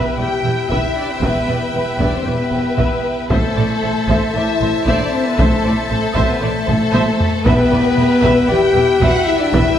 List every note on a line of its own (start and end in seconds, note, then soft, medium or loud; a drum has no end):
0.00 0.16 B3 medium
0.00 3.26 E4 medium
0.00 3.25 G4 medium
0.00 0.16 B4 medium
0.00 0.18 B4 medium
0.00 3.26 B4 medium
0.00 0.18 E5 medium
0.00 3.25 E5 medium
0.00 3.27 E5 medium
0.00 3.27 G5 medium
0.18 0.26 E1 soft
0.18 0.27 E2 soft
0.18 0.71 G4 medium
0.18 0.27 B4 soft
0.18 0.27 D5 soft
0.18 0.71 G5 medium
0.44 0.52 E1 soft
0.44 0.52 E2 soft
0.44 0.54 B4 soft
0.44 0.53 E5 soft
0.69 0.78 E1 medium
0.69 0.78 E2 medium
0.69 0.97 E4 medium
0.69 0.94 B4 medium
0.69 0.94 E5 medium
0.69 0.97 E5 medium
0.69 taiko medium
0.97 1.10 D4 medium
0.97 1.10 D5 medium
1.11 1.24 C4 medium
1.11 1.24 C5 medium
1.22 1.30 E1 medium
1.22 1.30 E2 medium
1.22 1.73 B3 medium
1.22 1.47 B4 medium
1.22 1.73 B4 medium
1.22 1.47 E5 medium
1.22 taiko medium
1.48 1.56 E1 soft
1.48 1.56 E2 soft
1.48 1.57 B4 soft
1.48 1.58 D5 soft
1.74 1.82 E1 soft
1.74 1.82 E2 soft
1.74 2.00 B3 medium
1.74 2.00 B4 medium
1.74 1.84 B4 soft
1.74 1.84 E5 soft
1.99 2.07 E1 medium
1.99 2.08 E2 medium
1.99 2.13 D4 medium
1.99 2.25 B4 medium
1.99 2.14 D5 medium
1.99 2.25 E5 medium
1.99 taiko medium
2.15 2.28 C4 medium
2.15 2.28 C5 soft
2.25 2.33 E1 medium
2.25 2.34 E2 soft
2.25 3.29 B3 medium
2.25 2.35 B4 soft
2.25 3.31 B4 medium
2.25 2.35 D5 soft
2.52 2.60 E1 soft
2.52 2.60 E2 soft
2.52 2.61 B4 soft
2.52 2.60 E5 soft
2.77 2.86 E1 medium
2.77 2.85 E2 medium
2.77 3.02 B4 medium
2.77 3.02 E5 medium
2.77 taiko medium
3.29 3.38 A1 medium
3.29 3.38 A2 medium
3.29 4.33 A3 medium
3.29 7.30 E4 medium
3.29 7.30 A4 medium
3.29 4.33 A4 medium
3.29 7.30 C5 medium
3.29 3.55 C5 medium
3.29 7.30 E5 medium
3.29 3.55 E5 medium
3.29 7.42 E5 medium
3.29 7.42 A5 medium
3.29 taiko medium
3.56 3.65 A1 medium
3.56 3.65 A2 soft
3.56 3.65 C5 soft
3.56 3.64 D5 soft
3.82 3.90 A1 soft
3.82 3.91 A2 soft
3.82 3.90 C5 soft
3.82 3.90 E5 soft
4.08 4.16 A1 medium
4.08 4.17 A2 medium
4.08 4.33 C5 medium
4.08 4.33 E5 medium
4.08 taiko medium
4.34 4.42 A1 medium
4.34 4.44 A2 soft
4.34 4.86 E4 medium
4.34 4.44 C5 soft
4.34 4.44 D5 soft
4.34 4.85 E5 medium
4.61 4.69 A1 medium
4.61 4.70 A2 medium
4.61 4.70 C5 medium
4.61 4.69 E5 medium
4.85 4.95 A1 medium
4.85 4.94 A2 medium
4.85 5.12 D4 medium
4.85 5.11 C5 medium
4.85 5.11 D5 medium
4.85 5.11 E5 medium
4.85 taiko medium
5.12 5.25 C4 medium
5.12 5.25 C5 medium
5.26 5.39 B3 medium
5.26 5.38 B4 medium
5.37 5.47 A1 medium
5.37 5.47 A2 medium
5.37 5.75 A3 medium
5.37 5.89 A4 medium
5.37 5.62 C5 medium
5.37 5.63 E5 medium
5.37 taiko medium
5.65 5.73 A1 medium
5.65 5.73 A2 medium
5.65 5.73 C5 soft
5.65 5.73 D5 medium
5.89 5.98 A1 medium
5.89 5.99 A2 medium
5.89 6.16 A3 medium
5.89 6.16 A4 medium
5.89 5.97 C5 medium
5.89 5.97 E5 medium
6.15 6.23 A1 medium
6.15 6.25 A2 medium
6.15 6.29 C4 medium
6.15 6.28 C5 medium
6.15 6.40 C5 medium
6.15 6.40 E5 medium
6.15 taiko medium
6.30 6.42 B3 medium
6.30 6.42 B4 medium
6.42 6.50 A1 medium
6.42 6.51 A2 medium
6.42 7.44 A3 medium
6.42 7.46 A4 medium
6.42 6.50 C5 soft
6.42 6.50 D5 medium
6.66 6.75 A1 medium
6.66 6.77 A2 medium
6.66 6.74 C5 medium
6.66 6.75 E5 medium
6.66 taiko low-mid medium
6.92 7.01 A1 medium
6.92 7.02 A2 medium
6.92 7.17 C5 medium
6.92 7.17 E5 medium
6.92 taiko high medium
7.20 taiko low medium
7.45 7.54 E1 medium
7.45 7.54 E2 medium
7.45 8.49 B3 loud
7.45 9.79 E4 medium
7.45 9.79 G4 medium
7.45 7.70 B4 medium
7.45 8.50 B4 medium
7.45 9.79 B4 medium
7.45 7.70 E5 medium
7.45 9.79 E5 medium
7.45 9.79 G5 medium
7.45 taiko medium
7.71 7.79 E1 medium
7.71 7.79 E2 medium
7.71 7.79 B4 soft
7.71 7.79 D5 medium
7.97 8.05 E1 medium
7.97 8.05 E2 medium
7.97 8.06 B4 medium
7.97 8.05 E5 medium
8.22 8.31 E1 medium
8.22 8.31 E2 medium
8.22 8.47 B4 medium
8.22 8.47 E5 medium
8.22 taiko medium
8.48 8.57 E1 medium
8.48 8.58 E2 medium
8.48 9.01 G4 loud
8.48 8.56 B4 medium
8.48 8.56 D5 medium
8.48 9.02 G5 medium
8.75 8.83 E1 medium
8.75 8.84 E2 medium
8.75 8.83 B4 medium
8.75 8.84 E5 medium
9.01 9.09 E1 medium
9.01 9.09 E2 medium
9.01 9.28 F#4 medium
9.01 9.26 B4 medium
9.01 9.26 E5 medium
9.01 9.27 F#5 loud
9.01 taiko medium
9.26 9.40 E4 medium
9.26 9.40 E5 medium
9.39 9.54 D4 medium
9.39 9.53 D5 medium
9.53 9.61 E1 medium
9.53 9.61 E2 medium
9.53 9.79 E4 loud
9.53 9.77 B4 medium
9.53 9.79 E5 loud
9.53 9.78 E5 medium
9.53 taiko medium